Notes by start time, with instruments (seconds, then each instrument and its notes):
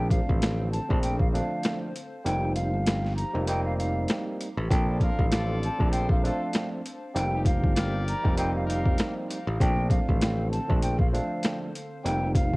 Already playing: picked electric bass A#1, analog synth pad D3 C4 A4 C5, tine electric piano F3 A3 C4 D4
0.10 flute F5, kick, closed hi-hat
0.29 picked electric bass A1, kick
0.42 snare, closed hi-hat
0.72 flute A5, closed hi-hat
0.89 picked electric bass A#1, tine electric piano F3 A3 C4 D4, kick
1.02 flute G5, closed hi-hat
1.19 flute F5, kick
1.32 tine electric piano F3 A3 C4 D4, flute F5, closed hi-hat
1.63 snare, closed hi-hat
1.96 closed hi-hat
2.25 picked electric bass F1, analog synth pad F3 D#4 G4, tine electric piano G3 A#3 C4 D#4, flute G5, closed hi-hat
2.56 flute F5, closed hi-hat
2.74 picked electric bass G1
2.87 snare, closed hi-hat
3.05 snare
3.16 flute A#5, closed hi-hat
3.34 picked electric bass F1, tine electric piano G3 A#3 C4 D#4
3.48 tine electric piano G3 A#3 C4 D#4, flute G5, closed hi-hat
3.64 flute F5
3.78 flute F5, closed hi-hat
4.08 snare, closed hi-hat
4.41 closed hi-hat
4.57 picked electric bass A1
4.69 picked electric bass A#1, tine electric piano F3 C4 D4 A4, analog synth pad C4 D4 C5 A5, flute G5, kick, closed hi-hat
4.88 horn section D4 F4 A4
5.00 horn section D4 F4 A#4, flute F5, kick, closed hi-hat
5.19 picked electric bass A1, kick
5.31 horn section F4 A4 D5, snare, closed hi-hat
5.63 flute A5, closed hi-hat
5.78 picked electric bass A#1, tine electric piano F3 A3 C4 D4, kick
5.92 horn section F4 A4 C5, flute G5, closed hi-hat
6.09 flute F5, kick
6.23 tine electric piano F3 A3 C4 D4, horn section D4 F4 A4, flute F5, closed hi-hat
6.53 snare, closed hi-hat
6.86 closed hi-hat
7.14 picked electric bass F1, analog synth pad F3 D#4 G4 C5, tine electric piano G3 A#3 C4 D#4, flute G5, closed hi-hat
7.34 horn section C4 D#4 G4
7.45 horn section D#4 G4 A#4, flute F5, kick, closed hi-hat
7.64 picked electric bass G1, kick
7.76 horn section G4 A#4 D5, snare, closed hi-hat
8.08 flute A#5, closed hi-hat
8.23 picked electric bass F1, tine electric piano G3 A#3 C4 D#4, kick
8.37 tine electric piano G3 A#3 C4 D#4, horn section D#4 G4 C5, flute G5, closed hi-hat
8.55 flute F5
8.67 horn section D#4 G4 A#4, flute F5, closed hi-hat
8.86 kick
8.98 snare, closed hi-hat
9.30 closed hi-hat
9.47 picked electric bass A1
9.57 picked electric bass A#1, analog synth pad D3 C4 A4, tine electric piano F3 A3 C4 D4, flute G5, kick, closed hi-hat
9.90 flute F5, kick, closed hi-hat
10.09 picked electric bass A1, kick
10.21 snare, closed hi-hat
10.51 flute A5, closed hi-hat
10.68 picked electric bass A#1, tine electric piano F3 A3 C4 D4, kick
10.82 flute G5, closed hi-hat
10.99 flute F5, kick
11.12 tine electric piano F3 A3 C4 D4, flute F5, closed hi-hat
11.43 snare, closed hi-hat
11.75 closed hi-hat
12.04 picked electric bass F1, analog synth pad F3 D#4 G4, tine electric piano G3 A#3 C4 D#4, flute G5, closed hi-hat
12.35 flute F5, kick, closed hi-hat
12.54 kick